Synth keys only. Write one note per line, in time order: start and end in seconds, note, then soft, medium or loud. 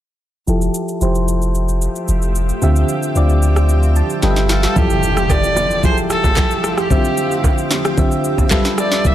0.47 0.91 F3 medium
0.47 0.91 E4 medium
0.47 0.91 G4 medium
0.47 0.92 A4 medium
1.01 1.87 F3 medium
1.01 1.87 E4 medium
1.01 1.88 G4 medium
1.01 1.88 C5 medium
2.62 3.05 D3 medium
2.62 3.05 C4 medium
2.62 3.05 F4 medium
2.62 3.06 G4 medium
2.62 3.06 E5 medium
3.15 4.01 D3 medium
3.15 4.01 C4 medium
3.15 4.02 F4 medium
3.15 4.02 G4 medium
3.15 4.02 D5 medium
3.96 4.21 A5 medium
4.22 4.66 G3 medium
4.22 4.66 F4 medium
4.22 4.66 A4 medium
4.22 4.66 B4 medium
4.22 4.30 D#5 medium
4.22 4.48 G5 medium
4.31 4.70 E5 medium
4.50 4.75 F5 medium
4.76 5.62 F3 medium
4.76 5.62 E4 medium
4.76 5.63 G4 medium
4.76 5.63 A4 medium
5.83 6.69 F3 medium
5.83 6.69 E4 medium
5.83 6.70 G4 medium
5.83 5.91 G#4 medium
5.91 6.73 A4 medium
6.90 7.76 D3 medium
6.90 7.76 C4 medium
6.90 6.97 E4 medium
6.90 7.77 G4 medium
6.90 7.77 E5 medium
6.97 7.80 F4 medium
7.97 8.51 D3 medium
7.97 8.51 C4 medium
7.97 8.50 F4 medium
7.97 8.52 G4 medium
7.97 8.51 E5 loud
8.51 8.94 G3 medium
8.51 8.95 F4 medium
8.51 8.95 A4 medium
8.51 8.95 B4 medium
8.51 8.95 E5 loud
9.04 9.15 C3 medium
9.04 9.15 A#3 medium
9.04 9.15 E4 medium
9.04 9.15 D5 medium